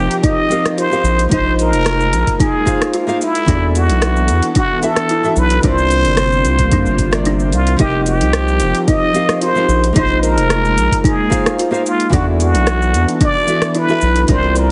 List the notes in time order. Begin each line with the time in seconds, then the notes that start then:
Already playing: F3 C4 D#4 G4 A#4 D#5
0.11 closed hi-hat, shaker
0.23 D#4 D#5, kick, closed hi-hat, shaker
0.49 F3 C4 G4 A#4 F5, closed hi-hat, shaker
0.66 cross-stick, closed hi-hat, shaker
0.78 F4 C5, closed hi-hat, shaker
0.91 F3 C4 G4 A#4 F5, shaker
1.04 A#1 G#3 A#3, shaker
1.19 closed hi-hat, shaker
1.29 A#1 A#3 D#4 F4 G#4 C5, kick, closed hi-hat, shaker
1.33 C5 D#5
1.59 A#4, closed hi-hat, shaker
1.72 F1, closed hi-hat, shaker
1.86 C5, cross-stick, closed hi-hat, shaker
2.00 shaker
2.12 A#1, closed hi-hat, shaker
2.27 kick, closed hi-hat, shaker
2.40 D#4 G#4, kick, closed hi-hat, shaker
2.65 A#3 F4 G#4 C5 F5, kick, closed hi-hat, shaker
2.82 cross-stick, closed hi-hat, shaker
2.93 F4, closed hi-hat, shaker
3.07 A#3 F4 G#4 C5 F5, shaker
3.21 E4, shaker
3.35 closed hi-hat, shaker
3.45 E2 E3 B3 D4 E4 F#4 A4 D5, kick, closed hi-hat, shaker
3.75 F#4, closed hi-hat, shaker
3.89 B1, closed hi-hat, shaker
4.02 B4, cross-stick, closed hi-hat, shaker
4.16 shaker
4.28 E2, closed hi-hat, shaker
4.42 closed hi-hat, shaker
4.55 D4 F#4, kick, closed hi-hat, shaker
4.82 E3 E4 F#4 A4 E5, closed hi-hat, shaker
4.96 cross-stick, closed hi-hat, shaker
5.09 E4, closed hi-hat, shaker
5.23 E3 E4 F#4 A4 E5, shaker
5.36 B1 B4, shaker
5.50 closed hi-hat, shaker
5.61 C2 C3 G3 A#3 C4 D4 F4 A#4 D5, kick, closed hi-hat, shaker
5.65 C5
5.78 shaker
5.91 closed hi-hat, shaker
6.05 G1, closed hi-hat, shaker
6.17 C5, cross-stick, closed hi-hat, shaker
6.32 shaker
6.44 C2, closed hi-hat, shaker
6.59 kick, closed hi-hat, shaker
6.71 F2 D4, kick, closed hi-hat, shaker
6.86 G1, shaker
6.98 kick, closed hi-hat, shaker
7.11 C3 C4 F4 A#4 D5, cross-stick, closed hi-hat, shaker
7.25 D4, closed hi-hat, shaker
7.40 shaker
7.52 C2 F4, closed hi-hat, shaker
7.67 closed hi-hat, shaker
7.76 F1 F3 C4 D#4 G4 A#4, kick, closed hi-hat, shaker
7.81 G4 D#5
8.06 G4, closed hi-hat, shaker
8.21 C2, closed hi-hat, shaker
8.33 C5, cross-stick, closed hi-hat, shaker
8.48 shaker
8.60 F1, closed hi-hat, shaker
8.75 closed hi-hat, shaker
8.88 D#4 D#5, kick, closed hi-hat, shaker
9.13 F3 C4 G4 A#4 F5, closed hi-hat, shaker
9.29 cross-stick, closed hi-hat, shaker
9.41 F4 C5, closed hi-hat, shaker
9.55 F3 C4 G4 A#4 F5, shaker
9.68 A#1 G#3 A#3, shaker
9.84 closed hi-hat, shaker
9.93 A#1 A#3 D#4 F4 G#4 C5, kick, closed hi-hat, shaker
9.97 C5 D#5
10.23 A#4, closed hi-hat, shaker
10.37 F1, closed hi-hat, shaker
10.50 C5, cross-stick, closed hi-hat, shaker
10.65 shaker
10.77 A#1, closed hi-hat, shaker
10.92 kick, closed hi-hat, shaker
11.04 D#4 G#4, kick, closed hi-hat, shaker
11.30 A#3 F4 G#4 C5 F5, kick, closed hi-hat, shaker
11.46 cross-stick, closed hi-hat, shaker
11.59 F4, closed hi-hat, shaker
11.71 A#3 F4 G#4 C5 F5, shaker
11.86 F4, shaker
12.00 closed hi-hat, shaker
12.09 E2 E3 B3 D4 E4 F#4 A4 D5, kick, closed hi-hat, shaker
12.14 F#4
12.40 F#4, closed hi-hat, shaker
12.54 B1, closed hi-hat, shaker
12.67 B4, cross-stick, closed hi-hat, shaker
12.82 shaker
12.94 E2, closed hi-hat, shaker
13.08 closed hi-hat, shaker
13.21 D4 D5, kick, closed hi-hat, shaker
13.47 E3 E4 F#4 A4 E5, closed hi-hat, shaker
13.62 cross-stick, closed hi-hat, shaker
13.75 E4 B4, closed hi-hat, shaker
13.88 E3 E4 F#4 A4 E5, shaker
14.01 B1, shaker
14.16 closed hi-hat, shaker
14.27 C2 C3 G3 A#3 C4 D4 F4 A#4, kick, closed hi-hat, shaker
14.31 C5 D5
14.56 A#4, closed hi-hat, shaker